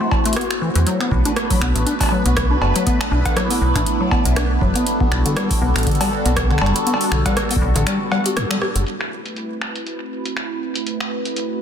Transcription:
Already playing: A3 C4 E4 F#4 C5
0.00 A3
0.12 kick, cowbell
0.25 A3, closed hi-hat
0.33 cross-stick, closed hi-hat
0.36 B3, closed hi-hat
0.41 closed hi-hat
0.51 finger snap
0.62 E3
0.75 E2 E3, closed hi-hat
0.86 F#3 A3 B3 D4 B4, closed hi-hat
1.01 B3, finger snap
1.12 B1, kick
1.25 D4, closed hi-hat
1.36 cross-stick, closed hi-hat
1.50 F#3, kick, open hi-hat
1.61 B1 B3, finger snap
1.76 A1, closed hi-hat
1.86 D4, closed hi-hat
2.00 kick, open hi-hat, cowbell
2.03 cowbell
2.06 cowbell
2.09 F#3, cowbell
2.26 B1 B3, closed hi-hat
2.37 finger snap, kick, cross-stick, closed hi-hat
2.51 D4
2.62 F#1, cowbell
2.76 F#3, closed hi-hat
2.86 B3 E4, kick, closed hi-hat
3.01 finger snap, cowbell
3.12 B1 D4
3.25 kick, closed hi-hat, cowbell
3.36 F#3, cross-stick, closed hi-hat
3.50 B3, open hi-hat
3.62 B1
3.75 A1 D4, finger snap, kick, closed hi-hat
3.86 closed hi-hat
4.00 F#3
4.11 B3, kick, cowbell
4.25 B1, closed hi-hat
4.36 D4, finger snap, cross-stick, closed hi-hat
4.61 F#1 F#3, kick
4.76 B3, closed hi-hat
4.87 G3 F#4 A4, closed hi-hat
5.00 B3, kick
5.12 B1, finger snap
5.26 D3, closed hi-hat
5.37 G3, cross-stick, closed hi-hat
5.51 kick, open hi-hat
5.62 B1 B3
5.76 A1, finger snap, closed hi-hat
5.78 closed hi-hat
5.83 D3, kick, closed hi-hat
5.87 closed hi-hat
5.91 closed hi-hat
5.95 closed hi-hat
6.01 G3, open hi-hat, cowbell
6.26 B1 B3, closed hi-hat
6.37 kick, cross-stick, closed hi-hat
6.51 D3, finger snap
6.58 F#1 G3, finger snap, cowbell
6.66 finger snap
6.76 closed hi-hat
6.87 B3, closed hi-hat
6.94 cowbell
7.01 open hi-hat
7.12 B1 D3, finger snap
7.26 G3, kick, closed hi-hat, cowbell
7.37 cross-stick, closed hi-hat
7.51 B3, open hi-hat
7.56 kick
7.62 B1
7.76 A1 D3, closed hi-hat
7.87 G3, finger snap, closed hi-hat
8.12 G3, cowbell
8.26 G4, closed hi-hat
8.37 G2, cross-stick, closed hi-hat
8.51 G3, finger snap
8.62 G4, cross-stick
8.76 F#1, closed hi-hat
8.86 A3 C4 E4 F#4 B4, closed hi-hat
9.01 finger snap
9.26 closed hi-hat
9.36 closed hi-hat
9.61 finger snap
9.76 closed hi-hat
9.87 closed hi-hat
10.26 closed hi-hat
10.37 finger snap, closed hi-hat
10.75 closed hi-hat
10.87 closed hi-hat
11.00 finger snap
11.25 closed hi-hat
11.36 closed hi-hat

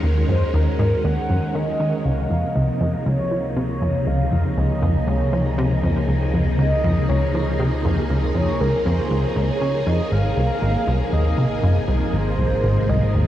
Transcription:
Already playing: D#2 D#3 G#3 A#3 C#4 F#4 A#4
0.03 D#2
0.29 F#2 C5
0.54 D#2 A#4
0.79 G#2
1.04 D#2 F#5
1.30 F#2
1.55 D#3 D#5
1.80 D#3
2.05 C#2 C3 F3 A#3 A#4 F5
2.30 F2
2.45 A#3 D#4
2.55 C#2 D#5
2.71 G#4
2.81 F2
3.06 C#2 C#5
3.31 F3
3.56 C3 C#5
3.82 F2
4.07 C#2 F5
4.32 F2
4.57 C#2 D#5
4.82 F2
5.07 C#2 C#5
5.33 F3
5.58 C3
5.83 F2
6.08 C#2
6.34 F2
6.59 C#2 D#5
6.84 F2
7.09 C#2 C#5
7.34 F3
7.59 C3
7.85 F2
8.10 C#2
8.35 F2 C#5
8.60 C#2 A#4
8.86 F2 C5
9.11 C#2
9.36 C#2 C#5
9.43 C5
9.50 C#5
9.61 C#3
9.87 F2 D#5
10.12 G#1 F5
10.37 C2
10.62 G#1
10.87 C2
11.13 D#2 D#5
11.38 C3
11.63 F#2
11.88 C2
12.13 G#1 C5
12.39 C2
12.64 G#1
12.89 C2 D#5
13.14 D#2

